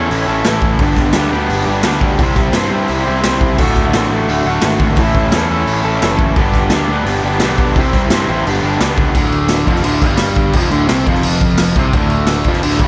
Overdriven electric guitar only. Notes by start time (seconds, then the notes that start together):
Already playing: A3 C#4 E4 A4
0.26 C#4 E4 A4
0.30 A3
0.45 A2 E3 A3 C#4 E4 A4
0.81 G2 D3 G3 B3 D4 G4
1.13 G3 B3 D4
1.18 G4
1.30 G3 B3 D4 G4
1.64 B3 D4 G4
1.69 G3
1.83 G2 D3 G3 B3 D4 G4
2.20 C3 G3 C4 E4 G4 C5
2.52 C4 E4 G4
2.57 C5
2.68 E4 G4 C5
2.73 C4
3.04 E4 G4 C5
3.09 C4
3.21 C3 G3 C4 E4 G4 C5
3.56 D2 A2 D3 A3
3.61 F#4
3.94 A2 D3 A3 F#4
4.11 D3 A3 F#4
4.46 D3 A3 F#4
4.63 D2 A2 D3 A3 F#4
4.99 A2 E3 A3 C#4 E4 A4
5.34 A3 C#4 E4 A4
5.49 A3 C#4 E4 A4
5.84 A3 C#4 E4 A4
6.01 A2 E3 A3 C#4 E4
6.05 A4
6.36 G2 D3 G3 B3 D4 G4
6.72 G3 B3 D4 G4
6.89 G3 B3 D4 G4
7.24 G3 B3 D4 G4
7.41 G2 D3 G3 B3 D4
7.46 G4
7.77 C3 G3 C4 E4 G4 C5
8.10 C4 E4 G4 C5
8.28 C4 E4 G4 C5
8.46 G2 D3 G3 B3 D4
8.50 G4
8.61 G3 B3 D4 G4
8.78 G2 D3 G3 B3 D4
8.83 G4
9.15 D2 D3
9.66 F2 F3
9.83 D2 D3
10.03 G2 G3
10.55 F2 F3
10.70 D2 D3
10.88 C3 C4
11.06 F2 F3
11.77 C3 C4
11.95 D2 D3
12.48 F2 F3
12.61 D2 D3
12.79 G2 G3